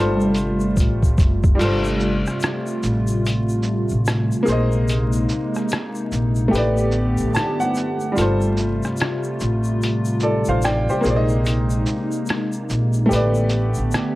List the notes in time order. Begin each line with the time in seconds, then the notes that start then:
Already playing: G1 C3 G3 A3 F4 A4
0.00 C5
0.20 shaker
0.34 closed hi-hat, shaker
0.36 shaker
0.60 shaker
0.77 A1, kick, closed hi-hat, shaker
1.03 kick, shaker
1.18 F#1, kick, closed hi-hat, shaker
1.20 shaker
1.44 kick, shaker
1.55 C3 G3 A3 F4
1.59 G1 A4, closed hi-hat, crash, shaker
1.64 C5
1.85 shaker
2.00 shaker
2.26 cross-stick, shaker
2.40 cross-stick, closed hi-hat, shaker
2.67 shaker
2.83 A1, shaker
3.07 shaker
3.26 closed hi-hat, shaker
3.49 shaker
3.63 shaker
3.89 A1, shaker
4.06 cross-stick, closed hi-hat, shaker
4.32 shaker
4.43 G#3 A#3 G#4, shaker
4.47 A#1 D#4 C5, shaker
4.52 D#5
4.72 shaker
4.88 closed hi-hat, shaker
5.13 shaker
5.29 shaker
5.55 cross-stick, shaker
5.69 cross-stick, closed hi-hat, shaker
5.95 shaker
6.12 A#1, shaker
6.36 shaker
6.48 D3 A3 B3 G4
6.53 A1 B4, closed hi-hat, shaker
6.57 D5
6.77 shaker
6.92 shaker
7.18 A1, shaker
7.34 A5, cross-stick, closed hi-hat, shaker
7.60 F#5, shaker
7.75 shaker
7.77 shaker
8.00 shaker
8.12 G3 F4
8.17 G1 C3 G3 F4 A4, closed hi-hat, shaker
8.21 C5
8.41 shaker
8.57 shaker
8.83 cross-stick, shaker
8.97 closed hi-hat, shaker
9.01 cross-stick
9.24 shaker
9.40 A1, shaker
9.64 shaker
9.82 closed hi-hat, shaker
10.05 shaker
10.20 A4 D5, shaker
10.45 A1 F5, shaker
10.49 C5
10.62 D5 G5, cross-stick, closed hi-hat, shaker
10.89 G4 C5, shaker
11.01 G#3 A#3 D#4 G#4, shaker
11.05 A#1 C5, shaker
11.10 D5
11.16 D#5
11.29 shaker
11.45 closed hi-hat, shaker
11.70 shaker
11.86 shaker
12.12 shaker
12.26 closed hi-hat, shaker
12.30 cross-stick
12.52 shaker
12.69 A#1, shaker
12.93 shaker
13.06 A3 B3 G4
13.10 A1 D3 B4, closed hi-hat, shaker
13.15 D5
13.35 shaker
13.50 closed hi-hat, shaker
13.74 A1, shaker
13.92 cross-stick, closed hi-hat, shaker